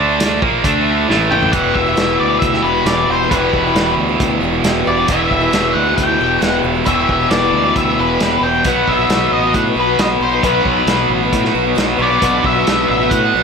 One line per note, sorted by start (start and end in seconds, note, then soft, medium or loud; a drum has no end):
0.00 0.39 D2 loud
0.00 0.40 D3 medium
0.00 0.41 A3 medium
0.00 0.41 D4 medium
0.20 snare loud
0.20 closed hi-hat medium
0.42 0.63 A#1 medium
0.42 0.63 A#2 medium
0.42 0.63 F3 medium
0.42 0.63 A#3 loud
0.42 kick loud
0.63 1.05 D2 medium
0.63 1.07 D3 medium
0.63 1.08 A3 loud
0.63 1.08 D4 loud
0.63 kick loud
0.63 closed hi-hat medium
1.09 1.50 A1 medium
1.09 1.52 A2 medium
1.09 1.52 E3 loud
1.09 1.53 A3 loud
1.09 snare medium
1.31 1.52 G5 loud
1.31 mid tom medium
1.42 floor tom medium
1.53 1.72 E1 medium
1.53 1.86 E2 medium
1.53 1.86 B2 medium
1.53 1.86 E3 medium
1.53 1.86 G3 medium
1.53 1.86 E4 medium
1.53 1.85 G4 medium
1.53 1.76 F#5 medium
1.53 kick loud
1.53 closed hi-hat medium
1.74 1.94 E1 medium
1.74 2.19 E5 medium
1.74 kick medium
1.86 1.96 E3 soft
1.86 1.96 G3 soft
1.86 1.96 E4 soft
1.86 1.96 G4 soft
1.96 2.17 E1 medium
1.96 2.52 E2 medium
1.96 2.52 B2 medium
1.96 2.53 E3 medium
1.96 2.53 G3 medium
1.96 2.52 E4 medium
1.96 2.52 G4 medium
1.96 snare loud
1.96 closed hi-hat medium
2.19 2.39 D2 medium
2.19 2.39 D5 medium
2.39 2.61 D2 medium
2.39 2.63 E5 medium
2.39 kick loud
2.39 closed hi-hat soft
2.53 2.63 E3 soft
2.53 2.64 G3 soft
2.53 2.64 E4 soft
2.53 2.64 G4 soft
2.53 snare soft
2.62 2.83 E1 medium
2.62 2.75 E3 soft
2.62 2.76 G3 medium
2.62 2.86 B4 medium
2.67 2.76 E4 medium
2.67 2.75 G4 medium
2.76 2.87 E3 soft
2.76 2.88 G3 soft
2.76 2.87 E4 soft
2.76 2.87 G4 soft
2.86 3.05 E1 medium
2.86 3.09 E2 medium
2.86 3.09 B2 medium
2.86 3.09 E3 medium
2.86 3.10 G3 medium
2.86 3.10 E4 medium
2.86 3.10 G4 medium
2.86 3.09 D5 medium
2.86 snare loud
2.86 closed hi-hat medium
3.09 3.28 E1 medium
3.09 3.21 E3 soft
3.09 3.21 G3 medium
3.09 3.22 E4 medium
3.09 3.31 C5 medium
3.14 3.20 G4 medium
3.22 3.31 E3 soft
3.22 3.32 G3 soft
3.22 3.32 E4 medium
3.22 3.32 G4 soft
3.31 3.50 E1 medium
3.31 3.65 E2 medium
3.31 3.65 B2 medium
3.31 3.65 E3 medium
3.31 3.65 G3 medium
3.31 3.65 E4 medium
3.31 3.66 G4 medium
3.31 3.94 B4 medium
3.31 kick loud
3.31 closed hi-hat medium
3.53 3.72 E1 medium
3.53 kick medium
3.67 3.75 E3 soft
3.67 3.76 G3 soft
3.67 3.76 E4 soft
3.67 3.76 G4 soft
3.75 3.94 E1 medium
3.75 4.09 E2 medium
3.75 4.09 B2 medium
3.75 4.09 E3 medium
3.75 4.09 G3 medium
3.75 4.08 E4 medium
3.75 4.07 G4 medium
3.75 snare loud
3.75 closed hi-hat medium
3.98 4.17 D2 medium
4.09 4.30 E3 soft
4.09 4.29 G3 soft
4.09 4.29 E4 soft
4.09 4.28 G4 soft
4.20 4.39 D2 medium
4.20 kick loud
4.20 closed hi-hat medium
4.29 4.39 E3 soft
4.29 4.40 G3 soft
4.29 4.42 E4 soft
4.29 4.41 G4 medium
4.41 4.60 E1 medium
4.41 4.52 E3 medium
4.41 4.53 G3 medium
4.41 4.51 E4 medium
4.41 4.51 G4 medium
4.52 4.63 E3 soft
4.52 4.63 G3 soft
4.52 4.64 E4 soft
4.52 4.64 G4 soft
4.64 4.83 E1 medium
4.64 4.86 E2 medium
4.64 4.86 B2 medium
4.64 4.84 E3 medium
4.64 4.85 G3 medium
4.64 4.86 E4 medium
4.64 4.87 G4 medium
4.64 snare loud
4.64 closed hi-hat medium
4.86 5.06 E1 medium
4.86 4.97 E3 medium
4.86 4.98 G3 soft
4.86 4.97 E4 medium
4.86 4.96 G4 medium
4.86 5.08 D5 medium
4.97 5.07 E3 soft
4.97 5.07 G3 soft
4.97 5.08 E4 soft
4.97 5.08 G4 medium
5.07 5.28 E1 medium
5.07 5.41 E2 medium
5.07 5.42 B2 medium
5.07 5.42 E3 medium
5.07 5.41 G3 medium
5.07 5.40 E4 medium
5.07 5.40 G4 medium
5.07 5.28 E5 medium
5.07 kick loud
5.07 closed hi-hat medium
5.29 5.50 E1 medium
5.29 5.76 E5 medium
5.29 kick medium
5.41 5.51 E3 soft
5.41 5.52 G3 soft
5.41 5.51 E4 soft
5.41 5.52 G4 medium
5.51 5.72 E1 medium
5.51 5.86 E2 medium
5.51 5.86 B2 medium
5.51 5.86 E3 medium
5.51 5.87 G3 medium
5.51 5.86 E4 medium
5.51 5.85 G4 medium
5.51 snare loud
5.51 closed hi-hat medium
5.73 5.95 D2 medium
5.73 5.95 F#5 medium
5.86 6.08 E3 soft
5.86 6.07 G3 soft
5.86 6.07 E4 soft
5.86 6.05 G4 soft
5.96 6.17 D2 medium
5.96 6.41 G5 medium
5.96 kick medium
5.96 closed hi-hat medium
6.07 6.17 E3 soft
6.07 6.18 G3 soft
6.07 6.19 E4 soft
6.07 6.19 G4 soft
6.18 6.40 E1 medium
6.18 6.39 E3 medium
6.18 6.40 G3 medium
6.18 6.40 E4 soft
6.18 6.41 G4 medium
6.40 6.61 E1 medium
6.40 6.64 E2 medium
6.40 6.64 B2 medium
6.40 6.61 E3 medium
6.40 6.62 G3 medium
6.40 6.63 E4 medium
6.40 6.63 G4 medium
6.40 6.60 F#5 medium
6.40 snare loud
6.40 closed hi-hat medium
6.62 6.84 E1 medium
6.62 6.75 E3 medium
6.62 6.75 G3 medium
6.62 6.75 E4 medium
6.62 6.73 G4 medium
6.75 6.84 E3 soft
6.75 6.85 G3 soft
6.75 6.84 E4 soft
6.75 6.85 G4 medium
6.84 7.06 E1 medium
6.84 7.19 E2 medium
6.84 7.19 B2 medium
6.84 7.20 E3 medium
6.84 7.20 G3 medium
6.84 7.19 E4 medium
6.84 7.18 G4 medium
6.84 7.30 E5 loud
6.84 kick loud
6.84 closed hi-hat medium
6.90 8.65 E3 medium
7.09 7.28 E1 medium
7.09 kick medium
7.19 7.31 E3 soft
7.19 7.31 G3 soft
7.19 7.31 E4 soft
7.19 7.31 G4 soft
7.30 7.50 E1 medium
7.30 7.64 E2 medium
7.30 7.65 B2 medium
7.30 7.65 E3 medium
7.30 7.64 G3 medium
7.30 7.64 E4 medium
7.30 7.63 G4 medium
7.30 7.76 D5 medium
7.30 snare loud
7.30 closed hi-hat medium
7.53 7.72 D2 medium
7.64 7.87 E3 soft
7.64 7.86 G3 soft
7.64 7.86 E4 soft
7.64 7.85 G4 soft
7.76 7.95 D2 medium
7.76 7.99 E5 medium
7.76 kick medium
7.76 closed hi-hat medium
7.86 7.97 E3 soft
7.86 7.98 G3 soft
7.86 7.99 E4 soft
7.86 7.98 G4 soft
7.98 8.17 E1 medium
7.98 8.20 E3 medium
7.98 8.21 G3 soft
7.98 8.21 E4 medium
7.98 8.21 G4 medium
7.98 8.45 B4 medium
8.20 8.40 E1 medium
8.20 8.43 E2 medium
8.20 8.43 B2 medium
8.20 8.42 E3 medium
8.20 8.43 G3 medium
8.20 8.44 E4 medium
8.20 8.44 G4 medium
8.20 snare loud
8.20 closed hi-hat medium
8.41 8.61 E1 medium
8.41 8.55 E3 soft
8.41 8.54 G3 medium
8.41 8.64 G5 medium
8.46 8.54 E4 soft
8.46 8.53 G4 medium
8.54 8.65 E3 soft
8.54 8.65 G3 soft
8.54 8.65 E4 soft
8.54 8.65 G4 medium
8.64 8.84 B1 medium
8.64 8.98 B2 medium
8.64 8.99 F#3 medium
8.64 8.99 B3 medium
8.64 8.99 D#4 medium
8.64 8.97 F#4 medium
8.64 8.89 F#5 loud
8.64 kick loud
8.64 closed hi-hat medium
8.88 9.07 B1 medium
8.88 9.32 E5 medium
8.88 kick medium
8.99 9.09 B3 soft
8.99 9.09 D#4 soft
8.99 9.09 F#4 soft
9.09 9.28 B1 medium
9.09 9.43 B2 medium
9.09 9.43 F#3 medium
9.09 9.43 B3 medium
9.09 9.43 D#4 medium
9.09 9.42 F#4 medium
9.09 snare loud
9.09 closed hi-hat medium
9.32 9.51 A1 medium
9.32 9.56 D#5 medium
9.43 9.67 B3 soft
9.43 9.66 D#4 soft
9.43 9.64 F#4 soft
9.54 9.73 A2 medium
9.54 9.61 F#5 medium
9.54 kick medium
9.54 closed hi-hat medium
9.65 9.75 B3 soft
9.65 9.75 D#4 soft
9.65 9.76 F#4 soft
9.74 9.95 B1 medium
9.74 9.87 F#3 medium
9.74 9.88 B3 medium
9.74 9.87 D#4 medium
9.74 9.85 F#4 medium
9.80 10.01 B4 medium
9.86 9.98 B3 soft
9.86 9.98 D#4 soft
9.86 9.98 F#4 soft
9.99 10.18 B1 medium
9.99 10.21 B2 medium
9.99 10.19 F#3 medium
9.99 10.20 B3 medium
9.99 10.21 D#4 medium
9.99 10.22 F#4 medium
9.99 10.06 D#5 medium
9.99 snare loud
9.99 closed hi-hat medium
10.20 10.40 B1 medium
10.20 10.32 F#3 medium
10.20 10.33 B3 medium
10.20 10.32 D#4 medium
10.20 10.31 F#4 medium
10.20 10.44 C5 medium
10.32 10.42 B3 soft
10.32 10.43 D#4 soft
10.32 10.43 F#4 medium
10.43 10.63 B1 medium
10.43 10.77 B2 medium
10.43 10.77 F#3 medium
10.43 10.77 B3 medium
10.43 10.77 D#4 medium
10.43 10.76 F#4 medium
10.43 11.07 B4 medium
10.43 kick loud
10.43 closed hi-hat medium
10.65 10.84 B1 medium
10.65 kick medium
10.77 10.88 B3 soft
10.77 10.88 D#4 soft
10.77 10.88 F#4 soft
10.87 11.06 B1 medium
10.87 11.22 B2 medium
10.87 11.22 F#3 medium
10.87 11.22 B3 medium
10.87 11.23 D#4 medium
10.87 11.22 F#4 medium
10.87 snare loud
10.87 closed hi-hat medium
11.10 11.29 A1 medium
11.23 11.44 B3 soft
11.23 11.43 D#4 soft
11.23 11.42 F#4 soft
11.33 11.52 A2 medium
11.33 kick medium
11.33 closed hi-hat medium
11.43 11.53 B3 soft
11.43 11.54 D#4 soft
11.43 11.54 F#4 medium
11.43 snare soft
11.53 11.74 B1 medium
11.53 11.66 F#3 medium
11.53 11.65 B3 medium
11.53 11.65 D#4 medium
11.53 11.63 F#4 medium
11.64 11.75 B3 soft
11.64 11.75 D#4 soft
11.64 11.75 F#4 soft
11.75 11.97 B1 medium
11.75 11.99 B2 medium
11.75 11.96 F#3 medium
11.75 11.96 B3 medium
11.75 11.98 D#4 medium
11.75 11.98 F#4 medium
11.75 snare loud
11.75 closed hi-hat medium
11.97 12.19 B1 medium
11.97 13.43 B2 medium
11.97 12.10 F#3 medium
11.97 12.10 B3 medium
11.97 12.10 D4 medium
12.02 13.43 B3 medium
12.02 12.45 D5 medium
12.10 12.21 B3 soft
12.10 12.22 D4 medium
12.10 12.22 F#4 soft
12.21 12.41 B1 medium
12.21 12.55 B2 medium
12.21 12.56 F#3 medium
12.21 12.56 B3 medium
12.21 12.55 D4 medium
12.21 12.53 F#4 medium
12.21 kick loud
12.21 closed hi-hat medium
12.44 12.63 B1 medium
12.44 12.88 E5 medium
12.44 kick medium
12.54 12.66 B3 soft
12.54 12.66 D4 soft
12.54 12.66 F#4 medium
12.66 12.86 B1 medium
12.66 13.00 B2 medium
12.66 13.00 F#3 medium
12.66 13.00 B3 medium
12.66 13.00 D4 medium
12.66 12.99 F#4 medium
12.66 snare loud
12.66 closed hi-hat medium
12.89 13.08 A1 medium
12.89 13.12 E5 medium
13.00 13.24 B3 soft
13.00 13.23 D4 soft
13.00 13.22 F#4 medium
13.10 13.30 A2 medium
13.10 13.43 F#5 loud
13.10 kick loud
13.10 closed hi-hat medium
13.24 13.35 B3 soft
13.24 13.35 D4 soft
13.24 13.34 F#4 soft
13.34 13.43 B1 medium
13.34 13.43 F#3 medium
13.34 13.43 B3 medium
13.34 13.43 D4 medium
13.34 13.43 F#4 medium